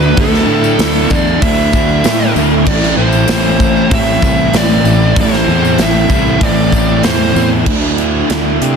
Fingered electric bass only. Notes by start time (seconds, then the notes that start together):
Already playing: D2
0.18 D2
0.46 A2
0.79 D2
1.10 E2
1.42 D2
2.05 A2
2.35 D2
2.66 A1
2.97 A1
3.29 A1
3.91 A1
4.22 C2
4.53 A1
4.84 A1
5.16 A1
5.47 E2
5.79 A1
6.10 C2
6.41 A1
7.35 E2
7.67 D2
8.30 D2
8.61 C3